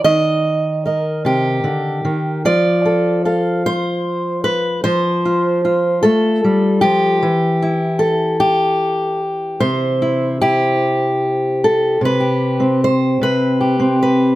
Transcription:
0, 0, Header, 1, 2, 480
1, 0, Start_track
1, 0, Key_signature, 0, "major"
1, 0, Tempo, 796813
1, 32, Time_signature, 6, 3, 24, 8
1, 8646, End_track
2, 0, Start_track
2, 0, Title_t, "Steel-string acoustic guitar"
2, 0, Program_c, 0, 25
2, 27, Note_on_c, 0, 75, 94
2, 29, Note_on_c, 0, 51, 69
2, 510, Note_off_c, 0, 75, 0
2, 515, Note_on_c, 0, 70, 40
2, 521, Note_on_c, 0, 75, 38
2, 751, Note_on_c, 0, 48, 54
2, 757, Note_off_c, 0, 75, 0
2, 759, Note_on_c, 0, 67, 69
2, 984, Note_off_c, 0, 48, 0
2, 987, Note_on_c, 0, 50, 56
2, 1225, Note_off_c, 0, 51, 0
2, 1230, Note_off_c, 0, 50, 0
2, 1233, Note_on_c, 0, 51, 50
2, 1455, Note_off_c, 0, 70, 0
2, 1476, Note_on_c, 0, 53, 63
2, 1477, Note_off_c, 0, 67, 0
2, 1478, Note_off_c, 0, 51, 0
2, 1479, Note_on_c, 0, 74, 95
2, 1719, Note_on_c, 0, 69, 39
2, 1957, Note_off_c, 0, 69, 0
2, 1959, Note_off_c, 0, 74, 0
2, 1959, Note_on_c, 0, 69, 41
2, 1962, Note_on_c, 0, 77, 39
2, 2203, Note_off_c, 0, 69, 0
2, 2205, Note_on_c, 0, 72, 91
2, 2672, Note_off_c, 0, 72, 0
2, 2675, Note_on_c, 0, 71, 81
2, 2895, Note_off_c, 0, 77, 0
2, 2912, Note_off_c, 0, 71, 0
2, 2913, Note_off_c, 0, 53, 0
2, 2914, Note_on_c, 0, 72, 95
2, 2920, Note_on_c, 0, 53, 68
2, 3165, Note_on_c, 0, 65, 40
2, 3395, Note_off_c, 0, 65, 0
2, 3402, Note_on_c, 0, 65, 41
2, 3628, Note_off_c, 0, 72, 0
2, 3630, Note_on_c, 0, 69, 88
2, 3639, Note_off_c, 0, 53, 0
2, 3641, Note_on_c, 0, 57, 54
2, 3879, Note_off_c, 0, 57, 0
2, 3882, Note_on_c, 0, 55, 57
2, 4103, Note_on_c, 0, 67, 78
2, 4113, Note_off_c, 0, 55, 0
2, 4116, Note_on_c, 0, 53, 58
2, 4329, Note_off_c, 0, 65, 0
2, 4351, Note_off_c, 0, 69, 0
2, 4352, Note_on_c, 0, 52, 74
2, 4356, Note_off_c, 0, 53, 0
2, 4593, Note_on_c, 0, 64, 44
2, 4813, Note_on_c, 0, 69, 76
2, 5053, Note_off_c, 0, 67, 0
2, 5060, Note_on_c, 0, 67, 77
2, 5541, Note_off_c, 0, 69, 0
2, 5783, Note_off_c, 0, 67, 0
2, 5786, Note_on_c, 0, 48, 68
2, 5786, Note_on_c, 0, 72, 82
2, 6033, Note_off_c, 0, 64, 0
2, 6035, Note_on_c, 0, 64, 42
2, 6266, Note_off_c, 0, 64, 0
2, 6273, Note_on_c, 0, 64, 41
2, 6274, Note_on_c, 0, 67, 96
2, 6460, Note_off_c, 0, 52, 0
2, 6989, Note_off_c, 0, 72, 0
2, 7013, Note_on_c, 0, 69, 76
2, 7208, Note_off_c, 0, 64, 0
2, 7228, Note_off_c, 0, 48, 0
2, 7235, Note_on_c, 0, 48, 58
2, 7237, Note_off_c, 0, 67, 0
2, 7245, Note_off_c, 0, 69, 0
2, 7260, Note_on_c, 0, 71, 86
2, 7351, Note_on_c, 0, 67, 35
2, 7590, Note_on_c, 0, 60, 47
2, 7731, Note_off_c, 0, 71, 0
2, 7736, Note_on_c, 0, 72, 81
2, 7958, Note_off_c, 0, 48, 0
2, 7960, Note_on_c, 0, 48, 57
2, 7966, Note_off_c, 0, 72, 0
2, 7969, Note_on_c, 0, 71, 82
2, 8194, Note_off_c, 0, 67, 0
2, 8196, Note_on_c, 0, 67, 38
2, 8308, Note_off_c, 0, 60, 0
2, 8311, Note_on_c, 0, 60, 49
2, 8442, Note_off_c, 0, 71, 0
2, 8449, Note_on_c, 0, 71, 71
2, 8646, Note_off_c, 0, 48, 0
2, 8646, Note_off_c, 0, 60, 0
2, 8646, Note_off_c, 0, 67, 0
2, 8646, Note_off_c, 0, 71, 0
2, 8646, End_track
0, 0, End_of_file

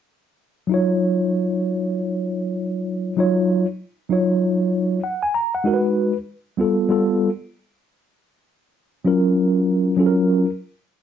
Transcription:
0, 0, Header, 1, 2, 480
1, 0, Start_track
1, 0, Key_signature, -6, "minor"
1, 0, Tempo, 618557
1, 551, Time_signature, 4, 2, 24, 8
1, 8557, End_track
2, 0, Start_track
2, 0, Title_t, "Tine electric piano"
2, 0, Program_c, 0, 4
2, 522, Note_on_c, 0, 54, 60
2, 540, Note_on_c, 0, 63, 63
2, 557, Note_on_c, 0, 65, 59
2, 574, Note_on_c, 0, 73, 76
2, 2425, Note_off_c, 0, 54, 0
2, 2434, Note_off_c, 0, 63, 0
2, 2443, Note_off_c, 0, 65, 0
2, 2451, Note_off_c, 0, 73, 0
2, 2458, Note_on_c, 0, 54, 76
2, 2469, Note_on_c, 0, 63, 69
2, 2476, Note_on_c, 0, 65, 71
2, 2484, Note_on_c, 0, 73, 80
2, 2827, Note_off_c, 0, 54, 0
2, 2833, Note_off_c, 0, 63, 0
2, 2837, Note_off_c, 0, 65, 0
2, 2840, Note_off_c, 0, 73, 0
2, 3177, Note_on_c, 0, 54, 65
2, 3185, Note_on_c, 0, 63, 64
2, 3198, Note_on_c, 0, 65, 61
2, 3204, Note_on_c, 0, 73, 70
2, 3869, Note_off_c, 0, 54, 0
2, 3873, Note_off_c, 0, 63, 0
2, 3880, Note_off_c, 0, 65, 0
2, 3883, Note_off_c, 0, 73, 0
2, 3908, Note_on_c, 0, 78, 57
2, 4055, Note_off_c, 0, 78, 0
2, 4056, Note_on_c, 0, 80, 73
2, 4142, Note_off_c, 0, 80, 0
2, 4148, Note_on_c, 0, 82, 70
2, 4296, Note_off_c, 0, 82, 0
2, 4304, Note_on_c, 0, 78, 67
2, 4377, Note_on_c, 0, 56, 71
2, 4384, Note_on_c, 0, 63, 62
2, 4393, Note_on_c, 0, 66, 66
2, 4403, Note_on_c, 0, 70, 61
2, 4453, Note_on_c, 0, 71, 78
2, 4462, Note_off_c, 0, 70, 0
2, 4532, Note_off_c, 0, 78, 0
2, 4747, Note_off_c, 0, 56, 0
2, 4750, Note_off_c, 0, 63, 0
2, 4755, Note_off_c, 0, 66, 0
2, 4785, Note_off_c, 0, 71, 0
2, 5101, Note_on_c, 0, 55, 71
2, 5109, Note_on_c, 0, 59, 68
2, 5119, Note_on_c, 0, 65, 63
2, 5129, Note_on_c, 0, 69, 77
2, 5332, Note_off_c, 0, 55, 0
2, 5341, Note_off_c, 0, 59, 0
2, 5341, Note_on_c, 0, 55, 73
2, 5348, Note_off_c, 0, 65, 0
2, 5350, Note_on_c, 0, 59, 70
2, 5356, Note_off_c, 0, 69, 0
2, 5357, Note_on_c, 0, 65, 67
2, 5365, Note_on_c, 0, 69, 80
2, 5648, Note_off_c, 0, 55, 0
2, 5652, Note_off_c, 0, 59, 0
2, 5656, Note_off_c, 0, 65, 0
2, 5660, Note_off_c, 0, 69, 0
2, 7019, Note_on_c, 0, 54, 70
2, 7026, Note_on_c, 0, 61, 59
2, 7032, Note_on_c, 0, 65, 61
2, 7042, Note_on_c, 0, 70, 69
2, 7710, Note_off_c, 0, 54, 0
2, 7714, Note_off_c, 0, 61, 0
2, 7717, Note_off_c, 0, 65, 0
2, 7722, Note_off_c, 0, 70, 0
2, 7735, Note_on_c, 0, 54, 70
2, 7742, Note_on_c, 0, 61, 63
2, 7752, Note_on_c, 0, 65, 59
2, 7758, Note_on_c, 0, 69, 55
2, 7809, Note_on_c, 0, 70, 79
2, 7819, Note_off_c, 0, 69, 0
2, 8106, Note_off_c, 0, 54, 0
2, 8110, Note_off_c, 0, 61, 0
2, 8114, Note_off_c, 0, 65, 0
2, 8143, Note_off_c, 0, 70, 0
2, 8557, End_track
0, 0, End_of_file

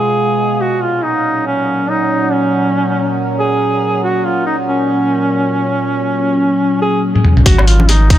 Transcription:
0, 0, Header, 1, 5, 480
1, 0, Start_track
1, 0, Tempo, 428571
1, 675, Time_signature, 4, 2, 24, 8
1, 9166, End_track
2, 0, Start_track
2, 0, Title_t, "Duduk"
2, 0, Program_c, 0, 69
2, 0, Note_on_c, 0, 68, 107
2, 680, Note_on_c, 0, 66, 100
2, 697, Note_off_c, 0, 68, 0
2, 923, Note_on_c, 0, 65, 92
2, 940, Note_off_c, 0, 66, 0
2, 1160, Note_on_c, 0, 63, 89
2, 1177, Note_off_c, 0, 65, 0
2, 1634, Note_off_c, 0, 63, 0
2, 1641, Note_on_c, 0, 61, 94
2, 2123, Note_on_c, 0, 63, 94
2, 2140, Note_off_c, 0, 61, 0
2, 2600, Note_on_c, 0, 61, 92
2, 2617, Note_off_c, 0, 63, 0
2, 3558, Note_off_c, 0, 61, 0
2, 3798, Note_on_c, 0, 68, 101
2, 4472, Note_off_c, 0, 68, 0
2, 4522, Note_on_c, 0, 66, 95
2, 4761, Note_on_c, 0, 65, 90
2, 4777, Note_off_c, 0, 66, 0
2, 4991, Note_off_c, 0, 65, 0
2, 4998, Note_on_c, 0, 63, 81
2, 5105, Note_off_c, 0, 63, 0
2, 5242, Note_on_c, 0, 61, 87
2, 7594, Note_off_c, 0, 61, 0
2, 7635, Note_on_c, 0, 68, 107
2, 7858, Note_off_c, 0, 68, 0
2, 8355, Note_on_c, 0, 66, 105
2, 8597, Note_on_c, 0, 65, 104
2, 8614, Note_off_c, 0, 66, 0
2, 8835, Note_on_c, 0, 63, 94
2, 8852, Note_off_c, 0, 65, 0
2, 9070, Note_off_c, 0, 63, 0
2, 9077, Note_on_c, 0, 63, 94
2, 9166, Note_off_c, 0, 63, 0
2, 9166, End_track
3, 0, Start_track
3, 0, Title_t, "Synth drone"
3, 0, Program_c, 1, 95
3, 0, Note_on_c, 1, 47, 76
3, 0, Note_on_c, 1, 56, 71
3, 0, Note_on_c, 1, 65, 83
3, 630, Note_off_c, 1, 56, 0
3, 631, Note_off_c, 1, 47, 0
3, 637, Note_off_c, 1, 65, 0
3, 678, Note_on_c, 1, 61, 82
3, 679, Note_on_c, 1, 46, 72
3, 682, Note_on_c, 1, 54, 68
3, 8312, Note_off_c, 1, 61, 0
3, 8313, Note_off_c, 1, 46, 0
3, 8314, Note_off_c, 1, 54, 0
3, 8354, Note_on_c, 1, 56, 70
3, 8354, Note_on_c, 1, 59, 82
3, 8355, Note_on_c, 1, 63, 94
3, 9166, Note_off_c, 1, 56, 0
3, 9166, Note_off_c, 1, 59, 0
3, 9166, Note_off_c, 1, 63, 0
3, 9166, End_track
4, 0, Start_track
4, 0, Title_t, "Sub bass"
4, 0, Program_c, 2, 38
4, 8356, Note_on_c, 2, 32, 102
4, 9166, Note_off_c, 2, 32, 0
4, 9166, End_track
5, 0, Start_track
5, 0, Title_t, "Drums"
5, 8014, Note_on_c, 9, 48, 46
5, 8115, Note_on_c, 9, 47, 73
5, 8126, Note_off_c, 9, 48, 0
5, 8227, Note_off_c, 9, 47, 0
5, 8255, Note_on_c, 9, 45, 77
5, 8354, Note_on_c, 9, 42, 88
5, 8355, Note_on_c, 9, 36, 122
5, 8367, Note_off_c, 9, 45, 0
5, 8466, Note_off_c, 9, 42, 0
5, 8467, Note_off_c, 9, 36, 0
5, 8495, Note_on_c, 9, 77, 80
5, 8502, Note_on_c, 9, 60, 63
5, 8596, Note_on_c, 9, 42, 56
5, 8607, Note_off_c, 9, 77, 0
5, 8614, Note_off_c, 9, 60, 0
5, 8708, Note_off_c, 9, 42, 0
5, 8733, Note_on_c, 9, 63, 99
5, 8834, Note_on_c, 9, 42, 82
5, 8840, Note_on_c, 9, 60, 88
5, 8845, Note_off_c, 9, 63, 0
5, 8946, Note_off_c, 9, 42, 0
5, 8952, Note_off_c, 9, 60, 0
5, 9074, Note_on_c, 9, 42, 57
5, 9075, Note_on_c, 9, 36, 103
5, 9166, Note_off_c, 9, 36, 0
5, 9166, Note_off_c, 9, 42, 0
5, 9166, End_track
0, 0, End_of_file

